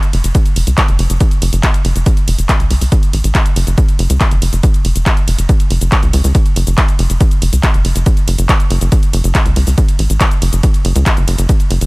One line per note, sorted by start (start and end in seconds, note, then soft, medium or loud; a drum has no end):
0.03 closed hi-hat medium
0.03 shaker soft
0.13 0.22 F#1 loud
0.13 open hi-hat loud
0.13 ride medium
0.24 0.33 F#1 medium
0.24 closed hi-hat medium
0.24 shaker medium
0.35 kick loud
0.35 closed hi-hat medium
0.35 ride medium
0.35 shaker soft
0.46 closed hi-hat medium
0.46 shaker soft
0.56 0.65 F#1 medium
0.56 open hi-hat loud
0.56 ride medium
0.67 0.75 C#2 medium
0.67 closed hi-hat medium
0.67 shaker medium
0.78 kick loud
0.78 clap loud
0.78 closed hi-hat medium
0.78 ride medium
0.78 shaker medium
0.88 0.97 F#1 medium
0.88 closed hi-hat medium
0.88 shaker soft
0.99 1.08 F#1 medium
0.99 open hi-hat loud
0.99 ride medium
1.10 1.18 F#1 medium
1.10 closed hi-hat medium
1.10 shaker medium
1.20 kick loud
1.20 closed hi-hat medium
1.20 ride medium
1.20 shaker medium
1.31 closed hi-hat medium
1.31 shaker soft
1.42 1.50 F#1 medium
1.42 open hi-hat loud
1.42 ride medium
1.53 1.61 F#1 medium
1.53 closed hi-hat medium
1.53 shaker medium
1.63 kick loud
1.63 clap loud
1.63 closed hi-hat medium
1.63 ride medium
1.63 shaker medium
1.74 closed hi-hat medium
1.74 shaker soft
1.85 1.93 F#1 loud
1.85 open hi-hat loud
1.85 ride medium
1.96 2.04 F#1 medium
1.96 closed hi-hat medium
1.96 shaker medium
2.06 kick loud
2.06 closed hi-hat medium
2.06 ride medium
2.06 shaker soft
2.17 closed hi-hat medium
2.17 shaker soft
2.28 2.36 F#1 loud
2.28 open hi-hat loud
2.28 ride medium
2.38 2.47 F#1 medium
2.38 closed hi-hat medium
2.38 shaker medium
2.49 kick loud
2.49 clap loud
2.49 closed hi-hat medium
2.49 ride medium
2.49 shaker medium
2.60 2.68 C#2 medium
2.60 closed hi-hat medium
2.60 shaker soft
2.71 2.79 C#2 loud
2.71 open hi-hat loud
2.71 ride medium
2.81 2.90 C#2 medium
2.81 open hi-hat medium
2.81 shaker medium
2.92 kick loud
2.92 closed hi-hat medium
2.92 ride medium
2.92 shaker medium
3.03 closed hi-hat medium
3.03 shaker soft
3.13 3.22 A1 medium
3.13 open hi-hat loud
3.13 ride medium
3.24 3.33 A1 medium
3.24 closed hi-hat medium
3.24 shaker medium
3.35 kick loud
3.35 clap loud
3.35 closed hi-hat medium
3.35 ride medium
3.35 shaker soft
3.46 closed hi-hat medium
3.46 shaker soft
3.56 3.65 F#1 loud
3.56 open hi-hat loud
3.56 ride medium
3.67 3.75 F#1 medium
3.67 closed hi-hat medium
3.67 shaker medium
3.78 kick loud
3.78 closed hi-hat medium
3.78 ride medium
3.78 shaker medium
3.89 closed hi-hat medium
3.89 shaker soft
3.99 4.08 F#1 medium
3.99 open hi-hat loud
3.99 ride medium
4.10 4.18 C#2 medium
4.10 closed hi-hat medium
4.10 shaker medium
4.21 kick loud
4.21 clap loud
4.21 closed hi-hat medium
4.21 ride medium
4.21 shaker medium
4.31 4.40 F#1 medium
4.31 closed hi-hat medium
4.31 shaker soft
4.42 4.50 F#1 medium
4.42 open hi-hat loud
4.42 ride medium
4.53 4.61 F#1 medium
4.53 closed hi-hat medium
4.53 shaker medium
4.63 kick loud
4.63 closed hi-hat medium
4.63 ride medium
4.63 shaker medium
4.74 closed hi-hat medium
4.74 shaker soft
4.85 4.93 F#1 medium
4.85 open hi-hat loud
4.85 ride medium
4.96 5.04 F#1 medium
4.96 closed hi-hat medium
4.96 shaker medium
5.06 kick loud
5.06 clap loud
5.06 closed hi-hat medium
5.06 ride medium
5.06 shaker medium
5.17 closed hi-hat medium
5.17 shaker soft
5.28 5.36 F#1 loud
5.28 open hi-hat loud
5.28 ride medium
5.38 5.47 F#1 medium
5.38 closed hi-hat medium
5.38 shaker medium
5.49 kick loud
5.49 closed hi-hat medium
5.49 ride medium
5.49 shaker medium
5.60 closed hi-hat medium
5.60 shaker soft
5.70 5.79 F#1 loud
5.70 open hi-hat loud
5.70 ride medium
5.81 5.90 F#1 medium
5.81 closed hi-hat medium
5.81 shaker medium
5.92 kick loud
5.92 clap loud
5.92 closed hi-hat medium
5.92 ride medium
5.92 shaker medium
6.03 6.11 C#2 medium
6.03 closed hi-hat medium
6.03 shaker soft
6.13 6.22 C#2 medium
6.13 open hi-hat loud
6.13 ride medium
6.24 6.33 C#2 medium
6.24 open hi-hat medium
6.24 shaker medium
6.35 kick loud
6.35 closed hi-hat medium
6.35 ride medium
6.35 shaker medium
6.46 closed hi-hat medium
6.46 shaker soft
6.56 6.65 F#1 medium
6.56 open hi-hat loud
6.56 ride medium
6.67 6.75 F#1 medium
6.67 closed hi-hat medium
6.67 shaker medium
6.78 kick loud
6.78 clap loud
6.78 closed hi-hat medium
6.78 ride medium
6.78 shaker medium
6.88 closed hi-hat medium
6.88 shaker soft
6.99 7.08 F#1 loud
6.99 open hi-hat loud
6.99 ride medium
7.10 7.18 F#1 medium
7.10 closed hi-hat medium
7.10 shaker medium
7.21 kick loud
7.21 closed hi-hat medium
7.21 ride medium
7.21 shaker medium
7.31 closed hi-hat medium
7.31 shaker soft
7.42 7.50 F#1 loud
7.42 open hi-hat loud
7.42 ride medium
7.53 7.61 C#2 medium
7.53 closed hi-hat medium
7.53 shaker medium
7.63 kick loud
7.63 clap loud
7.63 closed hi-hat medium
7.63 ride medium
7.63 shaker medium
7.74 7.83 F#1 medium
7.74 closed hi-hat medium
7.74 shaker soft
7.85 7.93 F#1 medium
7.85 open hi-hat loud
7.85 ride medium
7.96 8.04 F#1 medium
7.96 closed hi-hat medium
7.96 shaker medium
8.06 kick loud
8.06 closed hi-hat medium
8.06 ride medium
8.06 shaker medium
8.17 closed hi-hat medium
8.17 shaker soft
8.28 8.36 F#1 medium
8.28 open hi-hat loud
8.28 ride medium
8.38 8.47 F#1 medium
8.38 closed hi-hat soft
8.38 shaker medium
8.49 kick loud
8.49 clap loud
8.49 closed hi-hat medium
8.49 ride medium
8.49 shaker medium
8.60 closed hi-hat medium
8.60 shaker soft
8.70 8.79 F#1 loud
8.70 open hi-hat loud
8.70 ride medium
8.81 8.90 F#1 medium
8.81 closed hi-hat medium
8.81 shaker medium
8.92 kick loud
8.92 closed hi-hat medium
8.92 ride medium
8.92 shaker medium
9.03 closed hi-hat medium
9.03 shaker soft
9.13 9.22 F#1 medium
9.13 open hi-hat loud
9.13 ride medium
9.24 9.33 F#1 medium
9.24 closed hi-hat soft
9.24 shaker medium
9.35 kick loud
9.35 clap loud
9.35 closed hi-hat medium
9.35 ride medium
9.35 shaker medium
9.46 9.54 C#2 medium
9.46 closed hi-hat soft
9.46 shaker soft
9.56 9.65 C#2 medium
9.56 open hi-hat loud
9.56 ride medium
9.67 9.75 C#2 medium
9.67 open hi-hat medium
9.67 shaker medium
9.78 kick loud
9.78 closed hi-hat medium
9.78 ride medium
9.78 shaker medium
9.88 closed hi-hat medium
9.88 shaker soft
9.99 10.08 A1 medium
9.99 open hi-hat loud
9.99 ride medium
10.10 10.18 A1 medium
10.10 closed hi-hat medium
10.10 shaker medium
10.21 kick loud
10.21 clap loud
10.21 closed hi-hat medium
10.21 ride medium
10.21 shaker medium
10.31 closed hi-hat medium
10.31 shaker soft
10.42 10.50 F#1 loud
10.42 open hi-hat loud
10.42 ride medium
10.53 10.61 F#1 medium
10.53 closed hi-hat medium
10.53 shaker medium
10.63 kick loud
10.63 closed hi-hat medium
10.63 ride medium
10.63 shaker medium
10.74 closed hi-hat medium
10.74 shaker soft
10.85 10.93 F#1 loud
10.85 open hi-hat loud
10.85 ride medium
10.96 11.04 C#2 medium
10.96 closed hi-hat medium
10.96 shaker medium
11.06 kick loud
11.06 clap loud
11.06 closed hi-hat medium
11.06 ride medium
11.06 shaker medium
11.17 11.25 F#1 medium
11.17 closed hi-hat medium
11.17 shaker soft
11.28 11.36 F#1 medium
11.28 open hi-hat loud
11.28 ride medium
11.38 11.47 F#1 medium
11.38 closed hi-hat medium
11.38 shaker medium
11.49 kick loud
11.49 closed hi-hat medium
11.49 ride medium
11.49 shaker medium
11.60 closed hi-hat medium
11.60 shaker soft
11.71 11.79 F#1 medium
11.71 open hi-hat loud
11.71 ride medium
11.81 11.86 F#1 medium
11.81 closed hi-hat medium
11.81 shaker medium